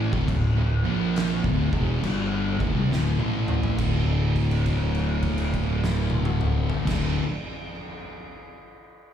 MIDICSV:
0, 0, Header, 1, 4, 480
1, 0, Start_track
1, 0, Key_signature, -1, "minor"
1, 0, Tempo, 877193
1, 147, Time_signature, 4, 2, 24, 8
1, 4999, End_track
2, 0, Start_track
2, 0, Title_t, "Distorted electric guitar"
2, 0, Program_c, 0, 30
2, 0, Note_on_c, 0, 45, 103
2, 0, Note_on_c, 0, 52, 109
2, 0, Note_on_c, 0, 57, 102
2, 62, Note_off_c, 0, 45, 0
2, 62, Note_off_c, 0, 57, 0
2, 63, Note_off_c, 0, 52, 0
2, 66, Note_on_c, 0, 38, 87
2, 69, Note_on_c, 0, 45, 102
2, 143, Note_off_c, 0, 38, 0
2, 144, Note_off_c, 0, 45, 0
2, 153, Note_on_c, 0, 38, 70
2, 157, Note_on_c, 0, 45, 83
2, 306, Note_off_c, 0, 38, 0
2, 308, Note_off_c, 0, 45, 0
2, 313, Note_on_c, 0, 38, 72
2, 317, Note_on_c, 0, 45, 87
2, 464, Note_off_c, 0, 38, 0
2, 466, Note_off_c, 0, 45, 0
2, 467, Note_on_c, 0, 46, 99
2, 469, Note_on_c, 0, 53, 104
2, 470, Note_on_c, 0, 58, 111
2, 777, Note_off_c, 0, 46, 0
2, 778, Note_off_c, 0, 53, 0
2, 779, Note_off_c, 0, 58, 0
2, 787, Note_on_c, 0, 38, 94
2, 789, Note_on_c, 0, 45, 104
2, 932, Note_off_c, 0, 38, 0
2, 933, Note_off_c, 0, 45, 0
2, 940, Note_on_c, 0, 40, 87
2, 945, Note_on_c, 0, 47, 98
2, 946, Note_on_c, 0, 52, 102
2, 1102, Note_off_c, 0, 40, 0
2, 1104, Note_off_c, 0, 47, 0
2, 1105, Note_off_c, 0, 52, 0
2, 1111, Note_on_c, 0, 43, 99
2, 1115, Note_on_c, 0, 50, 120
2, 1117, Note_on_c, 0, 55, 108
2, 1412, Note_off_c, 0, 43, 0
2, 1414, Note_off_c, 0, 50, 0
2, 1414, Note_off_c, 0, 55, 0
2, 1424, Note_on_c, 0, 38, 91
2, 1428, Note_on_c, 0, 45, 91
2, 1500, Note_off_c, 0, 38, 0
2, 1502, Note_off_c, 0, 45, 0
2, 1507, Note_on_c, 0, 48, 93
2, 1509, Note_on_c, 0, 55, 107
2, 1583, Note_off_c, 0, 48, 0
2, 1584, Note_off_c, 0, 55, 0
2, 1590, Note_on_c, 0, 38, 103
2, 1593, Note_on_c, 0, 45, 103
2, 1735, Note_off_c, 0, 38, 0
2, 1736, Note_off_c, 0, 45, 0
2, 1747, Note_on_c, 0, 45, 89
2, 1752, Note_on_c, 0, 52, 101
2, 1754, Note_on_c, 0, 57, 104
2, 2063, Note_off_c, 0, 45, 0
2, 2065, Note_on_c, 0, 38, 109
2, 2066, Note_off_c, 0, 52, 0
2, 2067, Note_off_c, 0, 57, 0
2, 2078, Note_on_c, 0, 45, 107
2, 2087, Note_on_c, 0, 50, 115
2, 3748, Note_off_c, 0, 38, 0
2, 3750, Note_on_c, 0, 38, 100
2, 3760, Note_off_c, 0, 45, 0
2, 3763, Note_on_c, 0, 45, 99
2, 3771, Note_off_c, 0, 50, 0
2, 3773, Note_on_c, 0, 50, 102
2, 3933, Note_off_c, 0, 38, 0
2, 3940, Note_off_c, 0, 45, 0
2, 3945, Note_off_c, 0, 50, 0
2, 4999, End_track
3, 0, Start_track
3, 0, Title_t, "Fingered electric bass"
3, 0, Program_c, 1, 33
3, 74, Note_on_c, 1, 26, 96
3, 146, Note_off_c, 1, 26, 0
3, 155, Note_on_c, 1, 26, 84
3, 296, Note_off_c, 1, 26, 0
3, 304, Note_on_c, 1, 26, 83
3, 449, Note_off_c, 1, 26, 0
3, 462, Note_on_c, 1, 34, 101
3, 762, Note_off_c, 1, 34, 0
3, 789, Note_on_c, 1, 26, 102
3, 931, Note_off_c, 1, 26, 0
3, 946, Note_on_c, 1, 28, 91
3, 1098, Note_off_c, 1, 28, 0
3, 1109, Note_on_c, 1, 31, 100
3, 1398, Note_off_c, 1, 31, 0
3, 1427, Note_on_c, 1, 26, 97
3, 1501, Note_off_c, 1, 26, 0
3, 1503, Note_on_c, 1, 36, 97
3, 1581, Note_off_c, 1, 36, 0
3, 1583, Note_on_c, 1, 26, 96
3, 1730, Note_off_c, 1, 26, 0
3, 1743, Note_on_c, 1, 33, 97
3, 2044, Note_off_c, 1, 33, 0
3, 2072, Note_on_c, 1, 26, 100
3, 3663, Note_off_c, 1, 26, 0
3, 3762, Note_on_c, 1, 26, 103
3, 3927, Note_off_c, 1, 26, 0
3, 4999, End_track
4, 0, Start_track
4, 0, Title_t, "Drums"
4, 71, Note_on_c, 9, 36, 110
4, 126, Note_off_c, 9, 36, 0
4, 154, Note_on_c, 9, 36, 99
4, 156, Note_on_c, 9, 49, 69
4, 209, Note_off_c, 9, 36, 0
4, 211, Note_off_c, 9, 49, 0
4, 636, Note_on_c, 9, 49, 65
4, 644, Note_on_c, 9, 38, 115
4, 690, Note_off_c, 9, 49, 0
4, 699, Note_off_c, 9, 38, 0
4, 790, Note_on_c, 9, 36, 102
4, 844, Note_off_c, 9, 36, 0
4, 946, Note_on_c, 9, 36, 107
4, 1001, Note_off_c, 9, 36, 0
4, 1114, Note_on_c, 9, 49, 63
4, 1168, Note_off_c, 9, 49, 0
4, 1424, Note_on_c, 9, 36, 115
4, 1479, Note_off_c, 9, 36, 0
4, 1600, Note_on_c, 9, 38, 70
4, 1654, Note_off_c, 9, 38, 0
4, 1749, Note_on_c, 9, 48, 73
4, 1804, Note_off_c, 9, 48, 0
4, 1905, Note_on_c, 9, 45, 101
4, 1960, Note_off_c, 9, 45, 0
4, 1989, Note_on_c, 9, 43, 102
4, 2043, Note_off_c, 9, 43, 0
4, 2071, Note_on_c, 9, 57, 94
4, 2072, Note_on_c, 9, 36, 118
4, 2125, Note_off_c, 9, 57, 0
4, 2127, Note_off_c, 9, 36, 0
4, 2384, Note_on_c, 9, 36, 60
4, 2385, Note_on_c, 9, 57, 44
4, 2439, Note_off_c, 9, 36, 0
4, 2439, Note_off_c, 9, 57, 0
4, 2469, Note_on_c, 9, 49, 47
4, 2524, Note_off_c, 9, 49, 0
4, 2549, Note_on_c, 9, 57, 52
4, 2550, Note_on_c, 9, 36, 66
4, 2604, Note_off_c, 9, 57, 0
4, 2605, Note_off_c, 9, 36, 0
4, 2706, Note_on_c, 9, 49, 46
4, 2761, Note_off_c, 9, 49, 0
4, 2860, Note_on_c, 9, 57, 51
4, 2863, Note_on_c, 9, 36, 65
4, 2914, Note_off_c, 9, 57, 0
4, 2917, Note_off_c, 9, 36, 0
4, 2943, Note_on_c, 9, 49, 54
4, 2998, Note_off_c, 9, 49, 0
4, 3029, Note_on_c, 9, 57, 56
4, 3030, Note_on_c, 9, 36, 71
4, 3084, Note_off_c, 9, 57, 0
4, 3085, Note_off_c, 9, 36, 0
4, 3194, Note_on_c, 9, 38, 97
4, 3249, Note_off_c, 9, 38, 0
4, 3337, Note_on_c, 9, 48, 106
4, 3392, Note_off_c, 9, 48, 0
4, 3422, Note_on_c, 9, 47, 108
4, 3476, Note_off_c, 9, 47, 0
4, 3507, Note_on_c, 9, 45, 107
4, 3562, Note_off_c, 9, 45, 0
4, 3664, Note_on_c, 9, 43, 102
4, 3719, Note_off_c, 9, 43, 0
4, 3760, Note_on_c, 9, 57, 105
4, 3761, Note_on_c, 9, 36, 120
4, 3769, Note_on_c, 9, 38, 102
4, 3815, Note_off_c, 9, 36, 0
4, 3815, Note_off_c, 9, 57, 0
4, 3824, Note_off_c, 9, 38, 0
4, 4999, End_track
0, 0, End_of_file